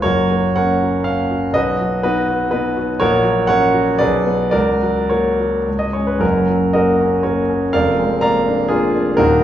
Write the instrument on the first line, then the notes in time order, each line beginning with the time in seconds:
grand piano
0.02 F#1 F#2 F#4 A#4 C#5
0.31 A#3
0.56 C#4 A#4 C#5 F#5
0.82 F#4
1.04 C#4 F5
1.31 F#4
1.53 B1 F#4 B4 D#5
1.81 F#3
2.03 B3 D#4 F#4 B4
2.28 F#4
2.51 B3 D#4 F#4 B4
2.77 F#4
3.00 A#1 F#4 A#4 C#5
3.24 F#3
3.47 C#4 A#4 C#5 F#5
3.74 F#4
3.99 B1 G#4 B4 D5
4.26 B3 F#4
4.51 C#2 F#4 A#4 D5
4.83 F#3
5.09 A#3 F#4 A#4 C#5
5.40 F#4
5.68 C#2
5.79 D#5
5.93 G#3 C#4 C#5
6.07 B4
6.19 F#1 F#2 C#4 F#4 A#4
6.49 F#3
6.73 A#3 F#4 A#4 D#5
7.01 C#4
7.23 A#3 F#4 A#4 C#5
7.50 C#4
7.73 F1 F2 A#4 D5 F5
7.99 G#3
8.21 A#3 D5 F5 A#5
8.49 D4
8.68 A#3 D4 F4 G#4
8.95 D4
9.17 D#1 D#2 D#4 F#4 A#4